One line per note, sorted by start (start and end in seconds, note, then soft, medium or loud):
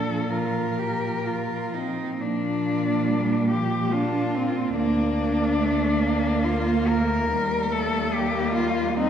0.00 2.00 A#2 soft
0.00 1.95 F3 soft
0.00 0.20 D4 soft
0.00 0.32 A4 soft
0.30 0.80 F4 soft
0.30 1.74 A#4 soft
0.79 1.28 G4 soft
1.27 1.76 F4 soft
1.75 2.22 C4 soft
1.75 2.20 D#4 soft
2.20 4.72 A#2 soft
2.20 3.09 F3 soft
2.20 3.89 A#3 soft
2.20 3.49 D4 medium
3.08 3.53 G3 soft
3.50 3.94 F3 soft
3.50 3.94 G4 medium
3.92 4.75 A#3 soft
3.92 4.36 D4 soft
3.92 4.75 F4 medium
4.35 4.76 C4 soft
4.75 7.26 D2 soft
4.75 6.41 A#3 soft
4.75 5.58 A#3 soft
4.75 6.46 D4 medium
5.60 6.03 A3 soft
6.02 7.33 A#3 medium
6.44 6.91 A#3 soft
6.44 6.89 F4 medium
6.88 7.31 A3 soft
6.88 7.74 A#4 medium
7.30 9.10 D#2 soft
7.30 7.72 G3 soft
7.30 8.13 G3 soft
7.72 8.15 A3 soft
7.72 8.15 A4 medium
8.13 8.97 G3 medium
8.13 8.97 A#3 medium
8.13 8.54 G4 medium
8.54 8.96 F4 medium
8.97 9.10 G3 medium
8.97 9.10 C4 medium
8.97 9.10 D#4 medium